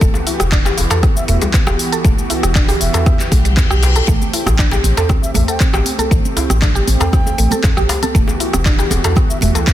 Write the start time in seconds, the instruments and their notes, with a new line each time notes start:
0.01 sub bass E1, analog synth pad E3 B3 F#4 G4, synth arpeggio sound A3, kick, closed hi-hat, shaker
0.14 djembe tone, shaker
0.27 synth arpeggio sound E4, open hi-hat, shaker
0.40 sub bass E1, cross-stick, closed hi-hat, djembe tone, shaker
0.52 synth arpeggio sound D4, kick, clap, closed hi-hat, shaker
0.65 synth arpeggio sound G4, djembe slap, shaker
0.77 sub bass E1, open hi-hat, djembe tone, shaker
0.90 synth arpeggio sound A4, closed hi-hat, mid tom, djembe slap, shaker
1.03 synth arpeggio sound B3, kick, cross-stick, closed hi-hat, djembe tone, shaker
1.16 bansuri E5, shaker
1.28 sub bass E1, synth arpeggio sound A3, bansuri E5, mid tom, open hi-hat, shaker
1.42 synth arpeggio sound G3, closed hi-hat, djembe tone, shaker
1.54 synth arpeggio sound B3, kick, clap, closed hi-hat, shaker
1.67 sub bass E1, synth arpeggio sound G4, cross-stick, djembe slap, djembe tone, shaker
1.79 open hi-hat, shaker
1.92 synth arpeggio sound A4, closed hi-hat, shaker
2.04 sub bass E1, synth arpeggio sound A3, kick, closed hi-hat, djembe tone, shaker
2.18 shaker
2.30 synth arpeggio sound E4, open hi-hat, djembe tone, shaker
2.43 sub bass E1, cross-stick, closed hi-hat, shaker
2.55 synth arpeggio sound D4, kick, clap, closed hi-hat, shaker
2.68 synth arpeggio sound G4, open hi-hat, djembe tone, shaker
2.81 sub bass E1, bansuri E5, open hi-hat, shaker
2.93 synth arpeggio sound A4, closed hi-hat, mid tom, djembe slap, djembe tone, shaker
3.06 synth arpeggio sound B3, kick, cross-stick, closed hi-hat, reverse cymbal, shaker
3.20 clap, shaker
3.31 sub bass B1, synth arpeggio sound A3, kick, open hi-hat, djembe tone, shaker
3.45 synth arpeggio sound G3, closed hi-hat, shaker
3.57 synth arpeggio sound B3, kick, clap, closed hi-hat, mid tom, djembe tone, shaker
3.71 sub bass B1, synth arpeggio sound G4, cross-stick, shaker
3.83 open hi-hat, djembe slap, shaker
3.96 synth arpeggio sound A4, closed hi-hat, djembe tone, shaker
4.07 sub bass A1, analog synth pad A3 C4, synth arpeggio sound A3, kick, closed hi-hat, djembe tone, shaker
4.22 muted conga, shaker
4.33 synth arpeggio sound E4, open hi-hat, shaker
4.46 sub bass A1, cross-stick, closed hi-hat, muted conga, djembe tone, high conga, shaker
4.59 synth arpeggio sound D4, kick, clap, closed hi-hat, shaker
4.71 synth arpeggio sound G4, djembe slap, djembe tone, shaker
4.84 sub bass A1, open hi-hat, muted conga, high conga, shaker
4.97 synth arpeggio sound A4, closed hi-hat, mid tom, djembe slap, shaker
5.09 synth arpeggio sound C4, kick, cross-stick, closed hi-hat, muted conga, djembe tone, low conga, shaker
5.23 bansuri E5, shaker
5.34 sub bass A1, synth arpeggio sound A3, bansuri E5, mid tom, open hi-hat, muted conga, djembe tone, low conga, shaker
5.48 synth arpeggio sound A4, bansuri G5, closed hi-hat, shaker
5.60 synth arpeggio sound C4, kick, clap, closed hi-hat, shaker
5.73 sub bass A1, synth arpeggio sound G4, cross-stick, muted conga, djembe slap, djembe tone, shaker
5.85 open hi-hat, high conga, shaker
5.99 synth arpeggio sound A4, closed hi-hat, muted conga, djembe tone, shaker
6.11 sub bass A1, synth arpeggio sound A3, kick, closed hi-hat, shaker
6.25 muted conga, shaker
6.37 synth arpeggio sound E4, open hi-hat, djembe tone, shaker
6.50 sub bass A1, cross-stick, closed hi-hat, muted conga, high conga, shaker
6.62 synth arpeggio sound D4, kick, clap, closed hi-hat, djembe tone, shaker
6.75 synth arpeggio sound G4, shaker
6.88 sub bass A1, open hi-hat, muted conga, high conga, shaker
7.00 synth arpeggio sound A4, bansuri G5, closed hi-hat, mid tom, djembe slap, djembe tone, shaker
7.13 synth arpeggio sound C4, kick, cross-stick, closed hi-hat, mid tom, muted conga, high conga, shaker
7.27 djembe tone, shaker
7.38 sub bass A1, synth arpeggio sound A3, open hi-hat, muted conga, shaker
7.51 synth arpeggio sound A4, closed hi-hat, high conga, low conga, shaker
7.63 synth arpeggio sound C4, kick, clap, closed hi-hat, mid tom, djembe tone, shaker
7.77 sub bass A1, synth arpeggio sound G4, cross-stick, muted conga, shaker
7.89 open hi-hat, djembe slap, djembe tone, shaker
8.03 synth arpeggio sound A4, closed hi-hat, muted conga, high conga, shaker
8.15 sub bass E1, analog synth pad E3 B3 F#4 G4, synth arpeggio sound A3, kick, closed hi-hat, shaker
8.28 muted conga, djembe tone, shaker
8.40 synth arpeggio sound E4, open hi-hat, shaker
8.53 sub bass E1, cross-stick, closed hi-hat, muted conga, djembe tone, high conga, shaker
8.66 synth arpeggio sound D4, kick, clap, closed hi-hat, shaker
8.79 synth arpeggio sound G4, djembe slap, shaker
8.91 sub bass E1, open hi-hat, muted conga, djembe tone, high conga, shaker
9.04 synth arpeggio sound A4, closed hi-hat, mid tom, djembe slap, shaker
9.16 synth arpeggio sound B3, kick, cross-stick, closed hi-hat, muted conga, djembe tone, low conga, shaker
9.30 bansuri E5, shaker
9.41 sub bass E1, synth arpeggio sound A3, bansuri E5, mid tom, open hi-hat, muted conga, low conga, shaker
9.55 synth arpeggio sound A4, closed hi-hat, djembe tone, shaker
9.67 synth arpeggio sound B3, kick, clap, closed hi-hat, shaker